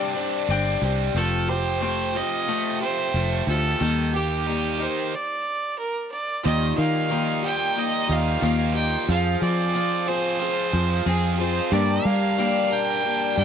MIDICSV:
0, 0, Header, 1, 8, 480
1, 0, Start_track
1, 0, Tempo, 660793
1, 841, Time_signature, 4, 2, 24, 8
1, 9766, End_track
2, 0, Start_track
2, 0, Title_t, "Fiddle"
2, 0, Program_c, 0, 110
2, 0, Note_on_c, 0, 74, 91
2, 572, Note_off_c, 0, 74, 0
2, 842, Note_on_c, 0, 69, 90
2, 1077, Note_on_c, 0, 72, 91
2, 1088, Note_off_c, 0, 69, 0
2, 1577, Note_on_c, 0, 75, 101
2, 1588, Note_off_c, 0, 72, 0
2, 2040, Note_off_c, 0, 75, 0
2, 2044, Note_on_c, 0, 72, 97
2, 2497, Note_off_c, 0, 72, 0
2, 2538, Note_on_c, 0, 69, 95
2, 2984, Note_off_c, 0, 69, 0
2, 3022, Note_on_c, 0, 67, 81
2, 3507, Note_on_c, 0, 72, 83
2, 3518, Note_off_c, 0, 67, 0
2, 3742, Note_on_c, 0, 74, 82
2, 3753, Note_off_c, 0, 72, 0
2, 4198, Note_off_c, 0, 74, 0
2, 4203, Note_on_c, 0, 70, 85
2, 4428, Note_off_c, 0, 70, 0
2, 4444, Note_on_c, 0, 74, 83
2, 4669, Note_off_c, 0, 74, 0
2, 4688, Note_on_c, 0, 75, 98
2, 4911, Note_off_c, 0, 75, 0
2, 4928, Note_on_c, 0, 77, 95
2, 5378, Note_off_c, 0, 77, 0
2, 5417, Note_on_c, 0, 79, 97
2, 5660, Note_on_c, 0, 75, 100
2, 5671, Note_off_c, 0, 79, 0
2, 5901, Note_on_c, 0, 77, 102
2, 5912, Note_off_c, 0, 75, 0
2, 6361, Note_off_c, 0, 77, 0
2, 6365, Note_on_c, 0, 79, 93
2, 6587, Note_off_c, 0, 79, 0
2, 6618, Note_on_c, 0, 77, 102
2, 6834, Note_off_c, 0, 77, 0
2, 6848, Note_on_c, 0, 74, 98
2, 7325, Note_on_c, 0, 72, 99
2, 7336, Note_off_c, 0, 74, 0
2, 8041, Note_off_c, 0, 72, 0
2, 8046, Note_on_c, 0, 68, 89
2, 8265, Note_off_c, 0, 68, 0
2, 8278, Note_on_c, 0, 72, 92
2, 8519, Note_on_c, 0, 74, 95
2, 8529, Note_off_c, 0, 72, 0
2, 8751, Note_on_c, 0, 77, 104
2, 8762, Note_off_c, 0, 74, 0
2, 9243, Note_on_c, 0, 79, 104
2, 9254, Note_off_c, 0, 77, 0
2, 9717, Note_off_c, 0, 79, 0
2, 9722, Note_on_c, 0, 79, 105
2, 9766, Note_off_c, 0, 79, 0
2, 9766, End_track
3, 0, Start_track
3, 0, Title_t, "Grand piano"
3, 0, Program_c, 1, 0
3, 4674, Note_on_c, 1, 65, 54
3, 4687, Note_on_c, 1, 67, 55
3, 4700, Note_on_c, 1, 75, 58
3, 5855, Note_off_c, 1, 65, 0
3, 5862, Note_off_c, 1, 67, 0
3, 5868, Note_off_c, 1, 75, 0
3, 5879, Note_on_c, 1, 65, 43
3, 5883, Note_on_c, 1, 67, 40
3, 5893, Note_on_c, 1, 75, 48
3, 6582, Note_off_c, 1, 65, 0
3, 6593, Note_on_c, 1, 65, 60
3, 6603, Note_off_c, 1, 67, 0
3, 6604, Note_on_c, 1, 68, 54
3, 6608, Note_off_c, 1, 75, 0
3, 6615, Note_on_c, 1, 72, 66
3, 8483, Note_off_c, 1, 65, 0
3, 8489, Note_off_c, 1, 68, 0
3, 8494, Note_off_c, 1, 72, 0
3, 8505, Note_on_c, 1, 67, 63
3, 8520, Note_on_c, 1, 70, 59
3, 8532, Note_on_c, 1, 74, 72
3, 9766, Note_off_c, 1, 67, 0
3, 9766, Note_off_c, 1, 70, 0
3, 9766, Note_off_c, 1, 74, 0
3, 9766, End_track
4, 0, Start_track
4, 0, Title_t, "Mandolin"
4, 0, Program_c, 2, 25
4, 0, Note_on_c, 2, 72, 75
4, 345, Note_off_c, 2, 72, 0
4, 365, Note_on_c, 2, 62, 70
4, 369, Note_on_c, 2, 67, 78
4, 586, Note_off_c, 2, 62, 0
4, 598, Note_off_c, 2, 67, 0
4, 9766, End_track
5, 0, Start_track
5, 0, Title_t, "Harmonium"
5, 0, Program_c, 3, 20
5, 4674, Note_on_c, 3, 55, 74
5, 4680, Note_on_c, 3, 63, 65
5, 4683, Note_on_c, 3, 65, 77
5, 6578, Note_off_c, 3, 55, 0
5, 6581, Note_off_c, 3, 63, 0
5, 6583, Note_off_c, 3, 65, 0
5, 6597, Note_on_c, 3, 68, 82
5, 6598, Note_on_c, 3, 60, 66
5, 6601, Note_on_c, 3, 53, 76
5, 8495, Note_off_c, 3, 68, 0
5, 8496, Note_off_c, 3, 60, 0
5, 8497, Note_off_c, 3, 53, 0
5, 8511, Note_on_c, 3, 55, 76
5, 8514, Note_on_c, 3, 70, 83
5, 8516, Note_on_c, 3, 62, 67
5, 9766, Note_off_c, 3, 55, 0
5, 9766, Note_off_c, 3, 62, 0
5, 9766, Note_off_c, 3, 70, 0
5, 9766, End_track
6, 0, Start_track
6, 0, Title_t, "Steel-string acoustic guitar"
6, 0, Program_c, 4, 25
6, 0, Note_on_c, 4, 43, 79
6, 0, Note_on_c, 4, 50, 77
6, 0, Note_on_c, 4, 55, 73
6, 0, Note_on_c, 4, 60, 85
6, 0, Note_on_c, 4, 62, 89
6, 0, Note_on_c, 4, 67, 80
6, 96, Note_off_c, 4, 67, 0
6, 105, Note_on_c, 4, 67, 54
6, 107, Note_off_c, 4, 62, 0
6, 110, Note_off_c, 4, 43, 0
6, 111, Note_off_c, 4, 60, 0
6, 113, Note_off_c, 4, 50, 0
6, 115, Note_on_c, 4, 62, 47
6, 116, Note_off_c, 4, 55, 0
6, 120, Note_on_c, 4, 60, 47
6, 130, Note_on_c, 4, 55, 42
6, 341, Note_off_c, 4, 55, 0
6, 350, Note_on_c, 4, 55, 57
6, 353, Note_off_c, 4, 67, 0
6, 356, Note_off_c, 4, 60, 0
6, 358, Note_off_c, 4, 62, 0
6, 364, Note_on_c, 4, 60, 57
6, 371, Note_on_c, 4, 62, 64
6, 375, Note_on_c, 4, 67, 67
6, 585, Note_off_c, 4, 67, 0
6, 594, Note_on_c, 4, 67, 60
6, 596, Note_off_c, 4, 55, 0
6, 596, Note_off_c, 4, 62, 0
6, 603, Note_off_c, 4, 60, 0
6, 605, Note_on_c, 4, 62, 49
6, 612, Note_on_c, 4, 60, 49
6, 618, Note_on_c, 4, 55, 46
6, 836, Note_off_c, 4, 60, 0
6, 838, Note_off_c, 4, 67, 0
6, 839, Note_off_c, 4, 55, 0
6, 840, Note_on_c, 4, 53, 71
6, 842, Note_on_c, 4, 57, 72
6, 844, Note_off_c, 4, 62, 0
6, 845, Note_on_c, 4, 60, 74
6, 852, Note_on_c, 4, 65, 78
6, 859, Note_on_c, 4, 67, 77
6, 1066, Note_off_c, 4, 67, 0
6, 1075, Note_on_c, 4, 67, 49
6, 1078, Note_off_c, 4, 65, 0
6, 1082, Note_off_c, 4, 53, 0
6, 1083, Note_off_c, 4, 57, 0
6, 1084, Note_off_c, 4, 60, 0
6, 1087, Note_on_c, 4, 65, 42
6, 1096, Note_on_c, 4, 60, 40
6, 1309, Note_on_c, 4, 57, 59
6, 1312, Note_off_c, 4, 60, 0
6, 1315, Note_off_c, 4, 65, 0
6, 1320, Note_off_c, 4, 67, 0
6, 1320, Note_on_c, 4, 60, 55
6, 1324, Note_on_c, 4, 65, 62
6, 1336, Note_on_c, 4, 67, 62
6, 1539, Note_off_c, 4, 67, 0
6, 1548, Note_on_c, 4, 67, 44
6, 1549, Note_off_c, 4, 65, 0
6, 1557, Note_off_c, 4, 57, 0
6, 1557, Note_on_c, 4, 65, 46
6, 1558, Note_off_c, 4, 60, 0
6, 1567, Note_on_c, 4, 60, 37
6, 1793, Note_on_c, 4, 53, 64
6, 1797, Note_off_c, 4, 67, 0
6, 1798, Note_off_c, 4, 65, 0
6, 1799, Note_off_c, 4, 60, 0
6, 1801, Note_on_c, 4, 57, 80
6, 1807, Note_on_c, 4, 65, 72
6, 1808, Note_on_c, 4, 60, 68
6, 1812, Note_on_c, 4, 67, 72
6, 2031, Note_off_c, 4, 67, 0
6, 2039, Note_on_c, 4, 67, 48
6, 2040, Note_off_c, 4, 53, 0
6, 2041, Note_off_c, 4, 65, 0
6, 2043, Note_off_c, 4, 57, 0
6, 2047, Note_off_c, 4, 60, 0
6, 2049, Note_on_c, 4, 65, 46
6, 2058, Note_on_c, 4, 60, 38
6, 2280, Note_on_c, 4, 57, 57
6, 2281, Note_off_c, 4, 60, 0
6, 2283, Note_off_c, 4, 67, 0
6, 2288, Note_off_c, 4, 65, 0
6, 2289, Note_on_c, 4, 60, 51
6, 2295, Note_on_c, 4, 65, 59
6, 2303, Note_on_c, 4, 67, 56
6, 2515, Note_off_c, 4, 67, 0
6, 2524, Note_off_c, 4, 57, 0
6, 2524, Note_on_c, 4, 67, 48
6, 2527, Note_off_c, 4, 65, 0
6, 2528, Note_off_c, 4, 60, 0
6, 2535, Note_on_c, 4, 65, 46
6, 2544, Note_on_c, 4, 60, 40
6, 2752, Note_on_c, 4, 51, 70
6, 2758, Note_on_c, 4, 55, 74
6, 2761, Note_off_c, 4, 60, 0
6, 2761, Note_off_c, 4, 65, 0
6, 2761, Note_off_c, 4, 67, 0
6, 2764, Note_on_c, 4, 58, 70
6, 2764, Note_on_c, 4, 63, 71
6, 2770, Note_on_c, 4, 67, 73
6, 2985, Note_off_c, 4, 67, 0
6, 2993, Note_on_c, 4, 67, 48
6, 3000, Note_off_c, 4, 51, 0
6, 3003, Note_off_c, 4, 55, 0
6, 3003, Note_off_c, 4, 63, 0
6, 3006, Note_off_c, 4, 58, 0
6, 3012, Note_on_c, 4, 63, 45
6, 3018, Note_on_c, 4, 58, 44
6, 3238, Note_on_c, 4, 55, 55
6, 3240, Note_off_c, 4, 58, 0
6, 3241, Note_off_c, 4, 67, 0
6, 3248, Note_off_c, 4, 63, 0
6, 3249, Note_on_c, 4, 58, 53
6, 3257, Note_on_c, 4, 63, 59
6, 3264, Note_on_c, 4, 67, 66
6, 3466, Note_off_c, 4, 67, 0
6, 3474, Note_off_c, 4, 63, 0
6, 3474, Note_on_c, 4, 67, 46
6, 3483, Note_off_c, 4, 55, 0
6, 3483, Note_on_c, 4, 63, 45
6, 3486, Note_off_c, 4, 58, 0
6, 3495, Note_on_c, 4, 58, 42
6, 3721, Note_off_c, 4, 67, 0
6, 3725, Note_off_c, 4, 63, 0
6, 3732, Note_off_c, 4, 58, 0
6, 4676, Note_on_c, 4, 51, 69
6, 4680, Note_on_c, 4, 53, 68
6, 4681, Note_on_c, 4, 58, 65
6, 4686, Note_on_c, 4, 67, 75
6, 4688, Note_on_c, 4, 63, 69
6, 4903, Note_off_c, 4, 67, 0
6, 4912, Note_on_c, 4, 67, 53
6, 4914, Note_off_c, 4, 63, 0
6, 4922, Note_off_c, 4, 51, 0
6, 4923, Note_on_c, 4, 63, 46
6, 4924, Note_off_c, 4, 53, 0
6, 4924, Note_off_c, 4, 58, 0
6, 4935, Note_on_c, 4, 58, 40
6, 5150, Note_off_c, 4, 58, 0
6, 5151, Note_on_c, 4, 51, 80
6, 5155, Note_off_c, 4, 63, 0
6, 5157, Note_on_c, 4, 53, 75
6, 5159, Note_off_c, 4, 67, 0
6, 5159, Note_on_c, 4, 58, 82
6, 5164, Note_on_c, 4, 63, 87
6, 5168, Note_on_c, 4, 67, 90
6, 5382, Note_off_c, 4, 67, 0
6, 5391, Note_on_c, 4, 67, 46
6, 5394, Note_off_c, 4, 63, 0
6, 5399, Note_off_c, 4, 51, 0
6, 5402, Note_off_c, 4, 53, 0
6, 5402, Note_on_c, 4, 63, 43
6, 5403, Note_off_c, 4, 58, 0
6, 5412, Note_on_c, 4, 58, 42
6, 5629, Note_off_c, 4, 58, 0
6, 5629, Note_on_c, 4, 53, 54
6, 5637, Note_off_c, 4, 63, 0
6, 5637, Note_on_c, 4, 58, 61
6, 5639, Note_off_c, 4, 67, 0
6, 5646, Note_on_c, 4, 63, 59
6, 5647, Note_on_c, 4, 67, 60
6, 5858, Note_off_c, 4, 67, 0
6, 5867, Note_on_c, 4, 67, 53
6, 5869, Note_off_c, 4, 63, 0
6, 5877, Note_off_c, 4, 53, 0
6, 5877, Note_on_c, 4, 63, 47
6, 5881, Note_off_c, 4, 58, 0
6, 5890, Note_on_c, 4, 58, 46
6, 6109, Note_on_c, 4, 51, 72
6, 6110, Note_off_c, 4, 63, 0
6, 6113, Note_off_c, 4, 58, 0
6, 6114, Note_on_c, 4, 53, 72
6, 6116, Note_off_c, 4, 67, 0
6, 6119, Note_on_c, 4, 63, 76
6, 6122, Note_on_c, 4, 58, 79
6, 6129, Note_on_c, 4, 67, 78
6, 6345, Note_off_c, 4, 67, 0
6, 6354, Note_on_c, 4, 67, 49
6, 6356, Note_off_c, 4, 51, 0
6, 6359, Note_off_c, 4, 53, 0
6, 6362, Note_off_c, 4, 63, 0
6, 6363, Note_off_c, 4, 58, 0
6, 6371, Note_on_c, 4, 63, 48
6, 6379, Note_on_c, 4, 58, 44
6, 6598, Note_off_c, 4, 67, 0
6, 6599, Note_off_c, 4, 58, 0
6, 6600, Note_on_c, 4, 53, 71
6, 6602, Note_on_c, 4, 60, 67
6, 6606, Note_off_c, 4, 63, 0
6, 6609, Note_on_c, 4, 65, 73
6, 6613, Note_on_c, 4, 68, 86
6, 6821, Note_off_c, 4, 68, 0
6, 6829, Note_on_c, 4, 68, 57
6, 6832, Note_off_c, 4, 65, 0
6, 6841, Note_off_c, 4, 53, 0
6, 6841, Note_on_c, 4, 65, 54
6, 6842, Note_off_c, 4, 60, 0
6, 6852, Note_on_c, 4, 60, 43
6, 7073, Note_off_c, 4, 60, 0
6, 7076, Note_off_c, 4, 68, 0
6, 7077, Note_on_c, 4, 53, 79
6, 7079, Note_off_c, 4, 65, 0
6, 7082, Note_on_c, 4, 60, 74
6, 7088, Note_on_c, 4, 65, 92
6, 7089, Note_on_c, 4, 68, 88
6, 7298, Note_off_c, 4, 68, 0
6, 7307, Note_on_c, 4, 68, 48
6, 7310, Note_off_c, 4, 65, 0
6, 7319, Note_off_c, 4, 53, 0
6, 7319, Note_on_c, 4, 65, 46
6, 7322, Note_off_c, 4, 60, 0
6, 7330, Note_on_c, 4, 60, 43
6, 7546, Note_off_c, 4, 60, 0
6, 7547, Note_on_c, 4, 53, 61
6, 7553, Note_off_c, 4, 68, 0
6, 7554, Note_off_c, 4, 65, 0
6, 7555, Note_on_c, 4, 60, 61
6, 7563, Note_on_c, 4, 65, 62
6, 7570, Note_on_c, 4, 68, 65
6, 7780, Note_off_c, 4, 68, 0
6, 7789, Note_on_c, 4, 68, 53
6, 7792, Note_off_c, 4, 65, 0
6, 7793, Note_off_c, 4, 53, 0
6, 7797, Note_off_c, 4, 60, 0
6, 7800, Note_on_c, 4, 65, 49
6, 7810, Note_on_c, 4, 60, 42
6, 8027, Note_off_c, 4, 60, 0
6, 8028, Note_off_c, 4, 65, 0
6, 8031, Note_on_c, 4, 53, 71
6, 8034, Note_off_c, 4, 68, 0
6, 8036, Note_on_c, 4, 60, 81
6, 8037, Note_on_c, 4, 65, 73
6, 8043, Note_on_c, 4, 68, 83
6, 8260, Note_off_c, 4, 68, 0
6, 8269, Note_on_c, 4, 68, 54
6, 8274, Note_off_c, 4, 65, 0
6, 8275, Note_off_c, 4, 53, 0
6, 8277, Note_off_c, 4, 60, 0
6, 8283, Note_on_c, 4, 65, 50
6, 8291, Note_on_c, 4, 60, 47
6, 8504, Note_on_c, 4, 43, 71
6, 8511, Note_on_c, 4, 50, 74
6, 8513, Note_off_c, 4, 68, 0
6, 8515, Note_off_c, 4, 60, 0
6, 8516, Note_on_c, 4, 55, 78
6, 8518, Note_off_c, 4, 65, 0
6, 8518, Note_on_c, 4, 58, 84
6, 8521, Note_on_c, 4, 62, 75
6, 8524, Note_on_c, 4, 67, 80
6, 8742, Note_off_c, 4, 67, 0
6, 8750, Note_off_c, 4, 43, 0
6, 8750, Note_off_c, 4, 62, 0
6, 8751, Note_on_c, 4, 67, 56
6, 8753, Note_off_c, 4, 50, 0
6, 8756, Note_off_c, 4, 55, 0
6, 8757, Note_off_c, 4, 58, 0
6, 8758, Note_on_c, 4, 62, 48
6, 8767, Note_on_c, 4, 58, 49
6, 8770, Note_on_c, 4, 55, 41
6, 8983, Note_off_c, 4, 58, 0
6, 8986, Note_off_c, 4, 55, 0
6, 8986, Note_on_c, 4, 43, 87
6, 8989, Note_off_c, 4, 62, 0
6, 8992, Note_on_c, 4, 50, 77
6, 8992, Note_on_c, 4, 58, 90
6, 8993, Note_off_c, 4, 67, 0
6, 8994, Note_on_c, 4, 55, 89
6, 8998, Note_on_c, 4, 62, 84
6, 9001, Note_on_c, 4, 67, 91
6, 9213, Note_off_c, 4, 67, 0
6, 9221, Note_off_c, 4, 62, 0
6, 9221, Note_on_c, 4, 67, 50
6, 9224, Note_off_c, 4, 58, 0
6, 9229, Note_on_c, 4, 62, 47
6, 9230, Note_off_c, 4, 43, 0
6, 9232, Note_on_c, 4, 58, 46
6, 9233, Note_off_c, 4, 50, 0
6, 9234, Note_off_c, 4, 55, 0
6, 9242, Note_on_c, 4, 55, 45
6, 9455, Note_off_c, 4, 55, 0
6, 9461, Note_off_c, 4, 58, 0
6, 9463, Note_on_c, 4, 55, 57
6, 9467, Note_off_c, 4, 67, 0
6, 9470, Note_off_c, 4, 62, 0
6, 9470, Note_on_c, 4, 58, 61
6, 9479, Note_on_c, 4, 62, 68
6, 9485, Note_on_c, 4, 67, 68
6, 9691, Note_off_c, 4, 67, 0
6, 9700, Note_off_c, 4, 62, 0
6, 9700, Note_on_c, 4, 67, 56
6, 9708, Note_off_c, 4, 55, 0
6, 9709, Note_on_c, 4, 62, 51
6, 9711, Note_off_c, 4, 58, 0
6, 9720, Note_on_c, 4, 58, 48
6, 9722, Note_on_c, 4, 55, 46
6, 9766, Note_off_c, 4, 55, 0
6, 9766, Note_off_c, 4, 58, 0
6, 9766, Note_off_c, 4, 62, 0
6, 9766, Note_off_c, 4, 67, 0
6, 9766, End_track
7, 0, Start_track
7, 0, Title_t, "Overdriven electric guitar"
7, 0, Program_c, 5, 29
7, 0, Note_on_c, 5, 43, 64
7, 0, Note_on_c, 5, 55, 64
7, 0, Note_on_c, 5, 62, 61
7, 0, Note_on_c, 5, 67, 64
7, 106, Note_off_c, 5, 62, 0
7, 122, Note_off_c, 5, 43, 0
7, 593, Note_off_c, 5, 55, 0
7, 865, Note_off_c, 5, 67, 0
7, 1570, Note_on_c, 5, 53, 66
7, 2523, Note_off_c, 5, 53, 0
7, 2531, Note_on_c, 5, 53, 66
7, 2770, Note_off_c, 5, 53, 0
7, 3484, Note_on_c, 5, 51, 66
7, 3726, Note_off_c, 5, 51, 0
7, 5890, Note_on_c, 5, 53, 61
7, 6600, Note_off_c, 5, 53, 0
7, 7797, Note_on_c, 5, 53, 63
7, 8516, Note_off_c, 5, 53, 0
7, 9233, Note_on_c, 5, 70, 74
7, 9766, Note_off_c, 5, 70, 0
7, 9766, End_track
8, 0, Start_track
8, 0, Title_t, "Fingered electric bass"
8, 0, Program_c, 6, 33
8, 353, Note_on_c, 6, 31, 78
8, 548, Note_off_c, 6, 31, 0
8, 592, Note_on_c, 6, 36, 85
8, 788, Note_off_c, 6, 36, 0
8, 832, Note_on_c, 6, 29, 95
8, 1605, Note_off_c, 6, 29, 0
8, 2281, Note_on_c, 6, 29, 82
8, 2475, Note_off_c, 6, 29, 0
8, 2521, Note_on_c, 6, 38, 87
8, 2715, Note_off_c, 6, 38, 0
8, 2767, Note_on_c, 6, 39, 95
8, 3535, Note_off_c, 6, 39, 0
8, 4689, Note_on_c, 6, 39, 98
8, 4880, Note_off_c, 6, 39, 0
8, 4925, Note_on_c, 6, 51, 92
8, 5692, Note_off_c, 6, 51, 0
8, 5878, Note_on_c, 6, 39, 76
8, 6073, Note_off_c, 6, 39, 0
8, 6118, Note_on_c, 6, 39, 84
8, 6504, Note_off_c, 6, 39, 0
8, 6599, Note_on_c, 6, 41, 106
8, 6792, Note_off_c, 6, 41, 0
8, 6839, Note_on_c, 6, 53, 91
8, 7605, Note_off_c, 6, 53, 0
8, 7796, Note_on_c, 6, 41, 83
8, 7989, Note_off_c, 6, 41, 0
8, 8034, Note_on_c, 6, 41, 81
8, 8419, Note_off_c, 6, 41, 0
8, 8511, Note_on_c, 6, 43, 109
8, 8705, Note_off_c, 6, 43, 0
8, 8754, Note_on_c, 6, 55, 94
8, 9519, Note_off_c, 6, 55, 0
8, 9715, Note_on_c, 6, 43, 75
8, 9766, Note_off_c, 6, 43, 0
8, 9766, End_track
0, 0, End_of_file